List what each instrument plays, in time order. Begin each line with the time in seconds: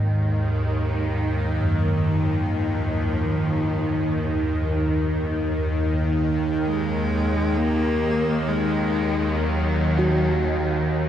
Already playing: synth drone D#2 D#3, kettle gongs G#2
0.08 cello G#3
1.52 cello F#3
1.62 kettle gongs F#2
2.01 cello F3
6.65 cello G#3
7.56 cello A#3
8.49 cello G#3
9.41 cello F#3
9.99 kettle gongs F#4